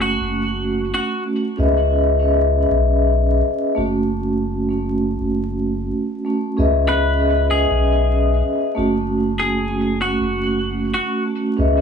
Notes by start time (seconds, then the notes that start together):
Already playing: F#1 A3 C#4 F#4
0.02 F#4
0.20 F#1
0.94 F#4
1.25 A3 C#4 F#4
1.57 C#2 C#4 G#4 B4 D#5 E5
2.19 C#4 G#4 B4 D#5 E5
2.70 B1
3.75 F#1 A3 C#4 F#4
4.69 A3 C#4 F#4
5.20 F#1
6.25 A3 C#4 F#4
6.57 C#2 C#4 G#4 B4 D#5 E5
6.89 B4
7.20 C#4 G#4 B4 D#5 E5
7.51 G#4
7.70 B1
8.75 F#1 A3 C#4 F#4
9.40 G#4
9.69 A3 C#4 F#4
10.02 F#4
10.20 F#1
10.94 F#4
11.25 A3 C#4 F#4
11.57 C#2 C#4 G#4 B4 D#5 E5